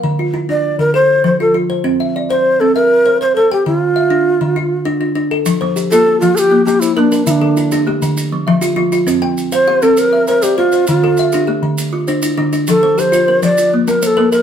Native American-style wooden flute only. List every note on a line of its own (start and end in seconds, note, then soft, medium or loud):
0.51 0.78 D5 medium
0.80 0.94 A#4 medium
0.95 1.23 C5 medium
1.26 1.39 C5 medium
1.41 1.54 A4 medium
2.30 2.62 C5 medium
2.60 2.75 A4 medium
2.75 3.17 A#4 medium
3.22 3.35 C5 loud
3.36 3.50 A4 medium
3.53 3.66 G4 medium
3.67 5.13 F4 medium
5.91 6.19 A4 loud
6.20 6.37 F4 loud
6.35 6.65 G4 loud
6.35 6.40 A4 loud
6.65 6.81 G4 medium
6.80 6.95 E4 medium
6.95 7.24 D4 medium
6.95 7.00 E4 medium
7.26 7.31 E4 medium
7.30 7.82 D4 medium
9.53 9.84 C5 loud
9.83 10.00 A4 loud
9.99 10.28 A#4 loud
10.28 10.44 A#4 medium
10.43 10.57 G4 medium
10.58 10.85 F4 medium
10.88 11.44 F4 medium
12.70 13.01 A4 medium
12.99 13.43 C5 medium
13.44 13.71 D5 loud
13.88 14.02 A#4 medium
14.02 14.08 A#4 medium
14.07 14.32 A4 loud
14.33 14.42 A#4 medium